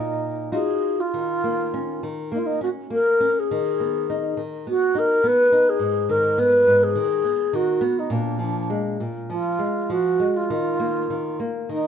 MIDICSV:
0, 0, Header, 1, 3, 480
1, 0, Start_track
1, 0, Key_signature, -6, "minor"
1, 0, Tempo, 616650
1, 881, Time_signature, 4, 2, 24, 8
1, 881, Tempo, 592300
1, 2801, Tempo, 575816
1, 6641, Tempo, 597610
1, 9664, End_track
2, 0, Start_track
2, 0, Title_t, "Alto flute"
2, 0, Program_c, 0, 73
2, 0, Note_on_c, 0, 63, 72
2, 409, Note_off_c, 0, 63, 0
2, 414, Note_on_c, 0, 68, 89
2, 777, Note_on_c, 0, 65, 77
2, 789, Note_off_c, 0, 68, 0
2, 1612, Note_off_c, 0, 65, 0
2, 1854, Note_on_c, 0, 63, 80
2, 1894, Note_on_c, 0, 65, 68
2, 1906, Note_off_c, 0, 63, 0
2, 1958, Note_on_c, 0, 63, 85
2, 1970, Note_off_c, 0, 65, 0
2, 2082, Note_off_c, 0, 63, 0
2, 2089, Note_on_c, 0, 66, 81
2, 2142, Note_off_c, 0, 66, 0
2, 2341, Note_on_c, 0, 70, 101
2, 2712, Note_on_c, 0, 68, 91
2, 2724, Note_off_c, 0, 70, 0
2, 3548, Note_off_c, 0, 68, 0
2, 3791, Note_on_c, 0, 66, 95
2, 4036, Note_on_c, 0, 70, 96
2, 4048, Note_off_c, 0, 66, 0
2, 4275, Note_on_c, 0, 71, 109
2, 4288, Note_off_c, 0, 70, 0
2, 4625, Note_on_c, 0, 68, 102
2, 4638, Note_off_c, 0, 71, 0
2, 4971, Note_on_c, 0, 70, 93
2, 4984, Note_off_c, 0, 68, 0
2, 5207, Note_on_c, 0, 71, 106
2, 5220, Note_off_c, 0, 70, 0
2, 5577, Note_on_c, 0, 68, 101
2, 5589, Note_off_c, 0, 71, 0
2, 6176, Note_on_c, 0, 66, 88
2, 6189, Note_off_c, 0, 68, 0
2, 6541, Note_on_c, 0, 63, 77
2, 6554, Note_off_c, 0, 66, 0
2, 6646, Note_on_c, 0, 62, 74
2, 6658, Note_off_c, 0, 63, 0
2, 6877, Note_off_c, 0, 62, 0
2, 6883, Note_on_c, 0, 62, 73
2, 7328, Note_off_c, 0, 62, 0
2, 7608, Note_on_c, 0, 65, 93
2, 8090, Note_on_c, 0, 66, 97
2, 8102, Note_off_c, 0, 65, 0
2, 8450, Note_on_c, 0, 65, 82
2, 8462, Note_off_c, 0, 66, 0
2, 9285, Note_off_c, 0, 65, 0
2, 9542, Note_on_c, 0, 63, 84
2, 9664, Note_off_c, 0, 63, 0
2, 9664, End_track
3, 0, Start_track
3, 0, Title_t, "Nylon-string guitar"
3, 0, Program_c, 1, 24
3, 0, Note_on_c, 1, 46, 56
3, 389, Note_off_c, 1, 46, 0
3, 406, Note_on_c, 1, 63, 45
3, 406, Note_on_c, 1, 65, 39
3, 411, Note_on_c, 1, 66, 48
3, 787, Note_off_c, 1, 63, 0
3, 787, Note_off_c, 1, 65, 0
3, 790, Note_off_c, 1, 66, 0
3, 886, Note_on_c, 1, 51, 61
3, 1129, Note_on_c, 1, 58, 54
3, 1361, Note_off_c, 1, 58, 0
3, 1372, Note_on_c, 1, 61, 53
3, 1600, Note_off_c, 1, 51, 0
3, 1602, Note_off_c, 1, 61, 0
3, 1610, Note_on_c, 1, 51, 53
3, 1838, Note_off_c, 1, 51, 0
3, 1842, Note_on_c, 1, 58, 51
3, 2072, Note_off_c, 1, 58, 0
3, 2079, Note_on_c, 1, 61, 49
3, 2312, Note_off_c, 1, 61, 0
3, 2317, Note_on_c, 1, 58, 52
3, 2552, Note_off_c, 1, 58, 0
3, 2560, Note_on_c, 1, 61, 53
3, 2793, Note_off_c, 1, 61, 0
3, 2810, Note_on_c, 1, 51, 66
3, 3052, Note_on_c, 1, 59, 53
3, 3286, Note_off_c, 1, 59, 0
3, 3298, Note_on_c, 1, 63, 57
3, 3517, Note_off_c, 1, 51, 0
3, 3527, Note_on_c, 1, 51, 54
3, 3529, Note_off_c, 1, 63, 0
3, 3762, Note_off_c, 1, 51, 0
3, 3775, Note_on_c, 1, 59, 56
3, 4005, Note_off_c, 1, 59, 0
3, 4009, Note_on_c, 1, 63, 53
3, 4240, Note_off_c, 1, 63, 0
3, 4249, Note_on_c, 1, 59, 57
3, 4478, Note_off_c, 1, 59, 0
3, 4486, Note_on_c, 1, 63, 56
3, 4712, Note_on_c, 1, 44, 63
3, 4717, Note_off_c, 1, 63, 0
3, 4961, Note_on_c, 1, 51, 57
3, 5195, Note_off_c, 1, 51, 0
3, 5202, Note_on_c, 1, 59, 56
3, 5432, Note_off_c, 1, 44, 0
3, 5435, Note_off_c, 1, 59, 0
3, 5442, Note_on_c, 1, 44, 54
3, 5675, Note_off_c, 1, 44, 0
3, 5680, Note_on_c, 1, 51, 55
3, 5914, Note_off_c, 1, 51, 0
3, 5922, Note_on_c, 1, 59, 54
3, 6155, Note_off_c, 1, 59, 0
3, 6162, Note_on_c, 1, 51, 59
3, 6393, Note_on_c, 1, 59, 56
3, 6394, Note_off_c, 1, 51, 0
3, 6629, Note_off_c, 1, 59, 0
3, 6635, Note_on_c, 1, 46, 68
3, 6866, Note_on_c, 1, 53, 54
3, 7102, Note_off_c, 1, 53, 0
3, 7116, Note_on_c, 1, 56, 55
3, 7349, Note_off_c, 1, 56, 0
3, 7350, Note_off_c, 1, 46, 0
3, 7360, Note_on_c, 1, 46, 54
3, 7591, Note_off_c, 1, 46, 0
3, 7597, Note_on_c, 1, 53, 50
3, 7830, Note_off_c, 1, 53, 0
3, 7831, Note_on_c, 1, 56, 49
3, 8071, Note_off_c, 1, 56, 0
3, 8078, Note_on_c, 1, 53, 52
3, 8317, Note_off_c, 1, 53, 0
3, 8319, Note_on_c, 1, 56, 52
3, 8557, Note_off_c, 1, 56, 0
3, 8564, Note_on_c, 1, 51, 59
3, 8800, Note_on_c, 1, 58, 50
3, 9035, Note_off_c, 1, 58, 0
3, 9037, Note_off_c, 1, 51, 0
3, 9046, Note_on_c, 1, 51, 54
3, 9277, Note_off_c, 1, 51, 0
3, 9283, Note_on_c, 1, 58, 49
3, 9514, Note_off_c, 1, 58, 0
3, 9521, Note_on_c, 1, 51, 52
3, 9664, Note_off_c, 1, 51, 0
3, 9664, End_track
0, 0, End_of_file